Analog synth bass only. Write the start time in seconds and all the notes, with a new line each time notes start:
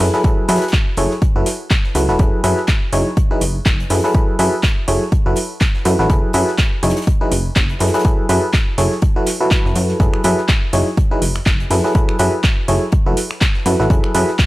0.49 F#2
0.97 F#1
1.35 F#1
1.95 C#2
2.09 E1
2.19 F#1
2.44 F#2
2.93 F#1
3.41 F#1
3.66 F#1
3.90 F#2
4.39 F#2
4.88 F#1
5.26 F#1
5.85 F#2
5.99 A1
6.10 F#1
6.34 F#2
6.83 F#1
7.32 F#1
7.56 F#1
7.80 F#2
8.29 F#2
8.78 F#1
9.65 F#1
9.75 F#2
10.00 F#1
10.24 F#2
10.73 F#1
11.22 F#1
11.46 F#1
11.70 F#2
12.19 F#2
12.68 F#1
13.06 F#1
13.66 F#2
13.80 A1
13.90 F#1
14.15 F#2